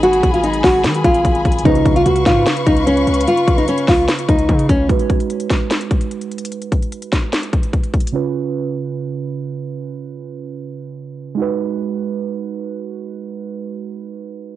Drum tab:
HH |x--x--x--x--x--x--o-----x--x--x--x--x--x--x-x-x-|x--x--x--x--x--x--x-----x--x--x--x--x--x--x-x-x-|x--x--x--x--x--x--o-----x--x--x--x--x--x--x-----|x--x--x--x--x--x--x-----x--x--x--x--x--x--x-x-x-|
SD |------------------o-----o-----------------------|------------------o-----o-----------------------|------------------o-----o-----------------------|------------------o-----o-----------------------|
BD |------o-----------o-----------o-----o-----o-----|o-----o-----------o-----------o-----------------|------o-----------o-----------o-----o-----o-----|o-----o-----------o-----------o-----------------|

HH |x--x--x--x--x--x--x-----x--x--x--x--x--x--x-x-x-|------------------------------------------------|------------------------------------------------|------------------------------------------------|
SD |------------------o-----o-----------------------|------------------------------------------------|------------------------------------------------|------------------------------------------------|
BD |------o-----------o-----------o-----o-----o-----|------------------------------------------------|------------------------------------------------|------------------------------------------------|

HH |------------------------------------------------|
SD |------------------------------------------------|
BD |------------------------------------------------|